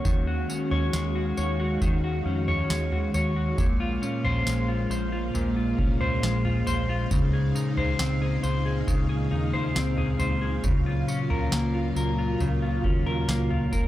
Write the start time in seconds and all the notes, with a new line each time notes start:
Already playing: A#3 F#4 C#5
0.05 D#2 D#3 G#3 C#4 F#4 F5, kick, floor tom, tambourine
0.27 F#4
0.49 C#4, tambourine
0.71 D#2 C#5, floor tom
0.93 D#2 G#3, snare, tambourine
1.15 F#4
1.37 D#2 C#5, tambourine
1.60 F#4
1.82 D#2 D#3, kick, floor tom, tambourine
2.04 F#4
2.25 F2 C#4
2.48 C#5, floor tom
2.70 D#2 G#3, snare, tambourine
2.92 F#4, floor tom
3.14 D#2 C#5, floor tom, tambourine
3.36 F#4
3.58 A#1 A#2 A#3, kick, floor tom, tambourine
3.80 F4
4.02 C#4, tambourine
4.24 A#1 C5, floor tom
4.46 A#1 G#3, snare, tambourine
4.68 F4
4.90 A#1 C5, tambourine
5.12 F4
5.34 A#1 A#2, floor tom, tambourine
5.56 F4
5.79 C2 C#4, kick
6.01 C5, floor tom
6.22 A#1 G#3, snare, tambourine
6.45 F4, floor tom
6.67 A#1 C5, floor tom, tambourine
6.89 F4
7.11 C#2 C#3 D#4, kick, floor tom, tambourine
7.33 G#4
7.55 D#4, tambourine
7.77 C#2 C5, floor tom
7.99 C#2 C4, snare, tambourine
8.22 G#4
8.43 C#2 C5, tambourine
8.65 G#4
8.87 C#2 C#3, kick, floor tom, tambourine
9.09 G#4
9.31 D#2 D#4
9.53 C5, floor tom
9.75 C#2 C4, snare, tambourine
9.98 G#4, floor tom
10.19 C#2 C5, floor tom, tambourine
10.42 G#4
10.64 C#2 C#3 F#3 A#3 F4, kick, floor tom, tambourine
10.86 F4
11.08 C#4, tambourine
11.30 C#2 A#4, floor tom
11.52 C#2 A#3, snare, tambourine
11.74 F4
11.96 C#2 A#4, tambourine
12.19 F4
12.40 C#2 C#3, floor tom, tambourine
12.62 F4
12.84 D#2 C#4, kick
13.06 A#4, floor tom
13.28 C#2 A#3, snare, tambourine
13.50 F4, floor tom
13.72 C#2 A#4, kick, floor tom, tambourine